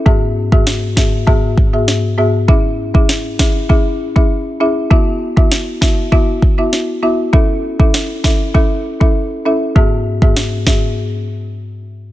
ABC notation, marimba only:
X:1
M:4/4
L:1/16
Q:1/4=99
K:E
V:1 name="Marimba"
[G,,B,FGe] z2 [G,,B,FGe] z2 [G,,B,FGe] z [G,,B,FGe] z2 [G,,B,FGe] z2 [G,,B,FGe] z | [CEGe] z2 [CEGe] z2 [CEGe] z [CEGe] z2 [CEGe] z2 [CEGe] z | [B,EFe] z2 [B,EFe] z2 [B,EFe] z [B,EFe] z2 [B,EFe] z2 [B,EFe] z | [CEAe] z2 [CEAe] z2 [CEAe] z [CEAe] z2 [CEAe] z2 [CEAe] z |
[G,,B,FGe] z2 [G,,B,FGe] z2 [G,,B,FGe] z8 z |]